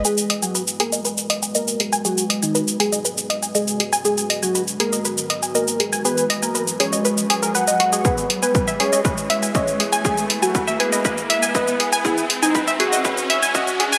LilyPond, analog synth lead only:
\new Staff \with { instrumentName = "Analog synth lead" } { \time 4/4 \key gis \minor \tempo 4 = 120 gis'8 r16 fis'8 r16 ais'8 r4 ais'8 r8 | fis'8 r16 dis'8 r16 gis'8 r4 gis'8 r8 | gis'8 r16 fis'8 r16 ais'8 r4 ais'8 r8 | b'8 r16 ais'8 r16 cis''8 r4 fis''8 r8 |
b'8 r16 b'8 r16 cis''8 r4 cis''8 r8 | gis'8 r16 fis'8 r16 b'8 r4 b'8 r8 | e'8 r16 dis'8 r16 fis'8 r4 fis'8 r8 | }